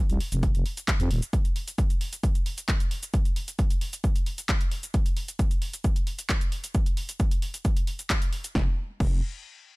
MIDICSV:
0, 0, Header, 1, 3, 480
1, 0, Start_track
1, 0, Tempo, 451128
1, 1418, Time_signature, 4, 2, 24, 8
1, 10387, End_track
2, 0, Start_track
2, 0, Title_t, "FM bass"
2, 0, Program_c, 0, 39
2, 103, Note_on_c, 0, 36, 88
2, 200, Note_off_c, 0, 36, 0
2, 344, Note_on_c, 0, 29, 94
2, 544, Note_off_c, 0, 29, 0
2, 584, Note_on_c, 0, 29, 77
2, 680, Note_off_c, 0, 29, 0
2, 1062, Note_on_c, 0, 41, 95
2, 1160, Note_off_c, 0, 41, 0
2, 1178, Note_on_c, 0, 27, 101
2, 1283, Note_off_c, 0, 27, 0
2, 9099, Note_on_c, 0, 29, 97
2, 9236, Note_off_c, 0, 29, 0
2, 9579, Note_on_c, 0, 29, 99
2, 9801, Note_off_c, 0, 29, 0
2, 10387, End_track
3, 0, Start_track
3, 0, Title_t, "Drums"
3, 102, Note_on_c, 9, 42, 68
3, 102, Note_on_c, 9, 82, 33
3, 208, Note_off_c, 9, 42, 0
3, 208, Note_off_c, 9, 82, 0
3, 217, Note_on_c, 9, 46, 102
3, 324, Note_off_c, 9, 46, 0
3, 342, Note_on_c, 9, 42, 61
3, 342, Note_on_c, 9, 82, 61
3, 449, Note_off_c, 9, 42, 0
3, 449, Note_off_c, 9, 82, 0
3, 458, Note_on_c, 9, 36, 117
3, 458, Note_on_c, 9, 42, 63
3, 458, Note_on_c, 9, 82, 48
3, 564, Note_off_c, 9, 36, 0
3, 564, Note_off_c, 9, 42, 0
3, 564, Note_off_c, 9, 82, 0
3, 583, Note_on_c, 9, 42, 67
3, 583, Note_on_c, 9, 82, 32
3, 689, Note_off_c, 9, 42, 0
3, 689, Note_off_c, 9, 82, 0
3, 698, Note_on_c, 9, 46, 105
3, 805, Note_off_c, 9, 46, 0
3, 822, Note_on_c, 9, 42, 62
3, 822, Note_on_c, 9, 82, 64
3, 929, Note_off_c, 9, 42, 0
3, 929, Note_off_c, 9, 82, 0
3, 937, Note_on_c, 9, 36, 119
3, 938, Note_on_c, 9, 39, 108
3, 938, Note_on_c, 9, 42, 66
3, 938, Note_on_c, 9, 82, 50
3, 1044, Note_off_c, 9, 36, 0
3, 1044, Note_off_c, 9, 39, 0
3, 1044, Note_off_c, 9, 42, 0
3, 1044, Note_off_c, 9, 82, 0
3, 1063, Note_on_c, 9, 42, 65
3, 1063, Note_on_c, 9, 82, 32
3, 1169, Note_off_c, 9, 42, 0
3, 1169, Note_off_c, 9, 82, 0
3, 1177, Note_on_c, 9, 46, 104
3, 1284, Note_off_c, 9, 46, 0
3, 1303, Note_on_c, 9, 42, 65
3, 1303, Note_on_c, 9, 82, 65
3, 1409, Note_off_c, 9, 42, 0
3, 1409, Note_off_c, 9, 82, 0
3, 1418, Note_on_c, 9, 36, 126
3, 1418, Note_on_c, 9, 42, 67
3, 1418, Note_on_c, 9, 82, 54
3, 1524, Note_off_c, 9, 36, 0
3, 1525, Note_off_c, 9, 42, 0
3, 1525, Note_off_c, 9, 82, 0
3, 1542, Note_on_c, 9, 42, 64
3, 1542, Note_on_c, 9, 82, 32
3, 1649, Note_off_c, 9, 42, 0
3, 1649, Note_off_c, 9, 82, 0
3, 1658, Note_on_c, 9, 46, 113
3, 1764, Note_off_c, 9, 46, 0
3, 1783, Note_on_c, 9, 42, 61
3, 1783, Note_on_c, 9, 82, 65
3, 1890, Note_off_c, 9, 42, 0
3, 1890, Note_off_c, 9, 82, 0
3, 1898, Note_on_c, 9, 36, 127
3, 1898, Note_on_c, 9, 42, 61
3, 1898, Note_on_c, 9, 82, 55
3, 2004, Note_off_c, 9, 36, 0
3, 2005, Note_off_c, 9, 42, 0
3, 2005, Note_off_c, 9, 82, 0
3, 2023, Note_on_c, 9, 42, 66
3, 2023, Note_on_c, 9, 82, 35
3, 2130, Note_off_c, 9, 42, 0
3, 2130, Note_off_c, 9, 82, 0
3, 2138, Note_on_c, 9, 46, 101
3, 2244, Note_off_c, 9, 46, 0
3, 2263, Note_on_c, 9, 42, 58
3, 2263, Note_on_c, 9, 82, 66
3, 2369, Note_off_c, 9, 42, 0
3, 2369, Note_off_c, 9, 82, 0
3, 2378, Note_on_c, 9, 36, 120
3, 2378, Note_on_c, 9, 42, 62
3, 2378, Note_on_c, 9, 82, 52
3, 2484, Note_off_c, 9, 36, 0
3, 2485, Note_off_c, 9, 42, 0
3, 2485, Note_off_c, 9, 82, 0
3, 2503, Note_on_c, 9, 42, 62
3, 2503, Note_on_c, 9, 82, 33
3, 2609, Note_off_c, 9, 42, 0
3, 2609, Note_off_c, 9, 82, 0
3, 2617, Note_on_c, 9, 46, 106
3, 2724, Note_off_c, 9, 46, 0
3, 2742, Note_on_c, 9, 42, 60
3, 2742, Note_on_c, 9, 82, 65
3, 2849, Note_off_c, 9, 42, 0
3, 2849, Note_off_c, 9, 82, 0
3, 2858, Note_on_c, 9, 36, 120
3, 2858, Note_on_c, 9, 39, 109
3, 2858, Note_on_c, 9, 42, 60
3, 2858, Note_on_c, 9, 82, 55
3, 2964, Note_off_c, 9, 36, 0
3, 2964, Note_off_c, 9, 39, 0
3, 2964, Note_off_c, 9, 42, 0
3, 2964, Note_off_c, 9, 82, 0
3, 2982, Note_on_c, 9, 42, 64
3, 2982, Note_on_c, 9, 82, 34
3, 3089, Note_off_c, 9, 42, 0
3, 3089, Note_off_c, 9, 82, 0
3, 3097, Note_on_c, 9, 46, 99
3, 3203, Note_off_c, 9, 46, 0
3, 3222, Note_on_c, 9, 42, 68
3, 3222, Note_on_c, 9, 82, 72
3, 3328, Note_off_c, 9, 42, 0
3, 3328, Note_off_c, 9, 82, 0
3, 3337, Note_on_c, 9, 42, 65
3, 3337, Note_on_c, 9, 82, 55
3, 3338, Note_on_c, 9, 36, 125
3, 3443, Note_off_c, 9, 42, 0
3, 3443, Note_off_c, 9, 82, 0
3, 3444, Note_off_c, 9, 36, 0
3, 3462, Note_on_c, 9, 42, 59
3, 3462, Note_on_c, 9, 82, 33
3, 3568, Note_off_c, 9, 42, 0
3, 3568, Note_off_c, 9, 82, 0
3, 3577, Note_on_c, 9, 46, 113
3, 3683, Note_off_c, 9, 46, 0
3, 3702, Note_on_c, 9, 42, 58
3, 3702, Note_on_c, 9, 82, 66
3, 3808, Note_off_c, 9, 42, 0
3, 3808, Note_off_c, 9, 82, 0
3, 3818, Note_on_c, 9, 36, 122
3, 3818, Note_on_c, 9, 42, 63
3, 3818, Note_on_c, 9, 82, 53
3, 3924, Note_off_c, 9, 36, 0
3, 3924, Note_off_c, 9, 42, 0
3, 3924, Note_off_c, 9, 82, 0
3, 3942, Note_on_c, 9, 42, 66
3, 3942, Note_on_c, 9, 82, 38
3, 4048, Note_off_c, 9, 42, 0
3, 4048, Note_off_c, 9, 82, 0
3, 4057, Note_on_c, 9, 46, 99
3, 4164, Note_off_c, 9, 46, 0
3, 4182, Note_on_c, 9, 42, 59
3, 4182, Note_on_c, 9, 82, 63
3, 4289, Note_off_c, 9, 42, 0
3, 4289, Note_off_c, 9, 82, 0
3, 4298, Note_on_c, 9, 36, 110
3, 4298, Note_on_c, 9, 42, 59
3, 4298, Note_on_c, 9, 82, 51
3, 4404, Note_off_c, 9, 36, 0
3, 4404, Note_off_c, 9, 42, 0
3, 4404, Note_off_c, 9, 82, 0
3, 4422, Note_on_c, 9, 42, 61
3, 4422, Note_on_c, 9, 82, 33
3, 4528, Note_off_c, 9, 42, 0
3, 4528, Note_off_c, 9, 82, 0
3, 4537, Note_on_c, 9, 46, 98
3, 4643, Note_off_c, 9, 46, 0
3, 4661, Note_on_c, 9, 42, 60
3, 4661, Note_on_c, 9, 82, 64
3, 4768, Note_off_c, 9, 42, 0
3, 4768, Note_off_c, 9, 82, 0
3, 4777, Note_on_c, 9, 36, 120
3, 4777, Note_on_c, 9, 39, 109
3, 4777, Note_on_c, 9, 42, 65
3, 4777, Note_on_c, 9, 82, 52
3, 4884, Note_off_c, 9, 36, 0
3, 4884, Note_off_c, 9, 39, 0
3, 4884, Note_off_c, 9, 42, 0
3, 4884, Note_off_c, 9, 82, 0
3, 4902, Note_on_c, 9, 42, 64
3, 4902, Note_on_c, 9, 82, 33
3, 5008, Note_off_c, 9, 42, 0
3, 5008, Note_off_c, 9, 82, 0
3, 5017, Note_on_c, 9, 46, 89
3, 5123, Note_off_c, 9, 46, 0
3, 5142, Note_on_c, 9, 42, 65
3, 5142, Note_on_c, 9, 82, 72
3, 5248, Note_off_c, 9, 42, 0
3, 5248, Note_off_c, 9, 82, 0
3, 5257, Note_on_c, 9, 42, 63
3, 5257, Note_on_c, 9, 82, 52
3, 5258, Note_on_c, 9, 36, 121
3, 5363, Note_off_c, 9, 42, 0
3, 5363, Note_off_c, 9, 82, 0
3, 5364, Note_off_c, 9, 36, 0
3, 5381, Note_on_c, 9, 42, 61
3, 5381, Note_on_c, 9, 82, 31
3, 5488, Note_off_c, 9, 42, 0
3, 5488, Note_off_c, 9, 82, 0
3, 5496, Note_on_c, 9, 46, 104
3, 5603, Note_off_c, 9, 46, 0
3, 5622, Note_on_c, 9, 42, 64
3, 5622, Note_on_c, 9, 82, 65
3, 5729, Note_off_c, 9, 42, 0
3, 5729, Note_off_c, 9, 82, 0
3, 5738, Note_on_c, 9, 36, 118
3, 5738, Note_on_c, 9, 42, 63
3, 5738, Note_on_c, 9, 82, 54
3, 5844, Note_off_c, 9, 36, 0
3, 5844, Note_off_c, 9, 42, 0
3, 5844, Note_off_c, 9, 82, 0
3, 5862, Note_on_c, 9, 42, 70
3, 5862, Note_on_c, 9, 82, 36
3, 5969, Note_off_c, 9, 42, 0
3, 5969, Note_off_c, 9, 82, 0
3, 5977, Note_on_c, 9, 46, 92
3, 6083, Note_off_c, 9, 46, 0
3, 6102, Note_on_c, 9, 42, 61
3, 6102, Note_on_c, 9, 82, 60
3, 6208, Note_off_c, 9, 42, 0
3, 6208, Note_off_c, 9, 82, 0
3, 6217, Note_on_c, 9, 42, 63
3, 6217, Note_on_c, 9, 82, 55
3, 6218, Note_on_c, 9, 36, 105
3, 6323, Note_off_c, 9, 42, 0
3, 6323, Note_off_c, 9, 82, 0
3, 6324, Note_off_c, 9, 36, 0
3, 6342, Note_on_c, 9, 42, 66
3, 6342, Note_on_c, 9, 82, 32
3, 6448, Note_off_c, 9, 42, 0
3, 6448, Note_off_c, 9, 82, 0
3, 6457, Note_on_c, 9, 46, 101
3, 6564, Note_off_c, 9, 46, 0
3, 6582, Note_on_c, 9, 42, 63
3, 6582, Note_on_c, 9, 82, 64
3, 6689, Note_off_c, 9, 42, 0
3, 6689, Note_off_c, 9, 82, 0
3, 6698, Note_on_c, 9, 36, 114
3, 6698, Note_on_c, 9, 39, 120
3, 6698, Note_on_c, 9, 42, 62
3, 6698, Note_on_c, 9, 82, 54
3, 6804, Note_off_c, 9, 36, 0
3, 6805, Note_off_c, 9, 39, 0
3, 6805, Note_off_c, 9, 42, 0
3, 6805, Note_off_c, 9, 82, 0
3, 6822, Note_on_c, 9, 42, 66
3, 6822, Note_on_c, 9, 82, 32
3, 6929, Note_off_c, 9, 42, 0
3, 6929, Note_off_c, 9, 82, 0
3, 6938, Note_on_c, 9, 46, 91
3, 7044, Note_off_c, 9, 46, 0
3, 7063, Note_on_c, 9, 42, 71
3, 7063, Note_on_c, 9, 82, 67
3, 7169, Note_off_c, 9, 42, 0
3, 7169, Note_off_c, 9, 82, 0
3, 7177, Note_on_c, 9, 42, 65
3, 7177, Note_on_c, 9, 82, 51
3, 7178, Note_on_c, 9, 36, 122
3, 7284, Note_off_c, 9, 42, 0
3, 7284, Note_off_c, 9, 82, 0
3, 7285, Note_off_c, 9, 36, 0
3, 7302, Note_on_c, 9, 42, 65
3, 7302, Note_on_c, 9, 82, 29
3, 7408, Note_off_c, 9, 42, 0
3, 7408, Note_off_c, 9, 82, 0
3, 7417, Note_on_c, 9, 46, 109
3, 7523, Note_off_c, 9, 46, 0
3, 7542, Note_on_c, 9, 42, 68
3, 7542, Note_on_c, 9, 82, 59
3, 7648, Note_off_c, 9, 42, 0
3, 7648, Note_off_c, 9, 82, 0
3, 7658, Note_on_c, 9, 36, 118
3, 7658, Note_on_c, 9, 42, 67
3, 7658, Note_on_c, 9, 82, 51
3, 7764, Note_off_c, 9, 42, 0
3, 7764, Note_off_c, 9, 82, 0
3, 7765, Note_off_c, 9, 36, 0
3, 7782, Note_on_c, 9, 42, 74
3, 7782, Note_on_c, 9, 82, 33
3, 7889, Note_off_c, 9, 42, 0
3, 7889, Note_off_c, 9, 82, 0
3, 7898, Note_on_c, 9, 46, 98
3, 8004, Note_off_c, 9, 46, 0
3, 8023, Note_on_c, 9, 42, 60
3, 8023, Note_on_c, 9, 82, 58
3, 8129, Note_off_c, 9, 42, 0
3, 8129, Note_off_c, 9, 82, 0
3, 8138, Note_on_c, 9, 36, 113
3, 8138, Note_on_c, 9, 42, 63
3, 8138, Note_on_c, 9, 82, 49
3, 8245, Note_off_c, 9, 36, 0
3, 8245, Note_off_c, 9, 42, 0
3, 8245, Note_off_c, 9, 82, 0
3, 8263, Note_on_c, 9, 42, 67
3, 8263, Note_on_c, 9, 82, 33
3, 8369, Note_off_c, 9, 42, 0
3, 8369, Note_off_c, 9, 82, 0
3, 8377, Note_on_c, 9, 46, 106
3, 8484, Note_off_c, 9, 46, 0
3, 8502, Note_on_c, 9, 42, 65
3, 8502, Note_on_c, 9, 82, 61
3, 8609, Note_off_c, 9, 42, 0
3, 8609, Note_off_c, 9, 82, 0
3, 8619, Note_on_c, 9, 36, 113
3, 8619, Note_on_c, 9, 39, 124
3, 8619, Note_on_c, 9, 42, 67
3, 8619, Note_on_c, 9, 82, 53
3, 8725, Note_off_c, 9, 36, 0
3, 8725, Note_off_c, 9, 39, 0
3, 8725, Note_off_c, 9, 42, 0
3, 8725, Note_off_c, 9, 82, 0
3, 8744, Note_on_c, 9, 42, 67
3, 8744, Note_on_c, 9, 82, 31
3, 8850, Note_off_c, 9, 42, 0
3, 8850, Note_off_c, 9, 82, 0
3, 8859, Note_on_c, 9, 46, 89
3, 8965, Note_off_c, 9, 46, 0
3, 8984, Note_on_c, 9, 42, 68
3, 8984, Note_on_c, 9, 82, 67
3, 9090, Note_off_c, 9, 42, 0
3, 9090, Note_off_c, 9, 82, 0
3, 9099, Note_on_c, 9, 36, 126
3, 9099, Note_on_c, 9, 38, 91
3, 9205, Note_off_c, 9, 36, 0
3, 9205, Note_off_c, 9, 38, 0
3, 9578, Note_on_c, 9, 36, 123
3, 9579, Note_on_c, 9, 49, 84
3, 9685, Note_off_c, 9, 36, 0
3, 9685, Note_off_c, 9, 49, 0
3, 10387, End_track
0, 0, End_of_file